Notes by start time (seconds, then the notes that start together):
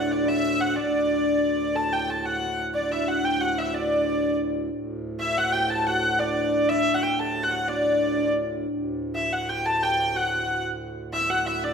Already playing: D2 A2 E4 F#4 A4 F#5
0.10 D4 D5
0.25 E4 E5
0.60 F#4 F#5
0.76 D2 A2 D4 D5
1.75 A4 A5
1.91 G4 G5
2.07 A4 A5
2.24 F#4 F#5
2.46 E4
2.75 D4 D5
2.91 E4 E5
3.07 F#4 F#5
3.23 G4 G5
3.40 F#4 F#5
3.57 E4 E5
3.72 D4 D5
4.71 D2 A2
5.20 E4 E5
5.38 F#4 F#5
5.53 G4 G5
5.70 A4 A5
5.87 F#4 F#5
6.14 E4
6.19 D4 D5
6.69 E4 E5
6.94 F#4 F#5
7.03 G4 G5
7.19 A4 A5
7.43 F#5
7.51 F#4 F#5
7.68 D4 D5
8.18 D4
8.67 D2 A2
9.15 E4 E5
9.33 F#5
9.49 G4 G5
9.66 A4 A5
9.82 G4 G5
9.99 G4
10.14 F#4 F#5
10.47 F#4
11.12 E4 E5
11.29 F#4 F#5
11.46 E4 E5
11.63 D4 D5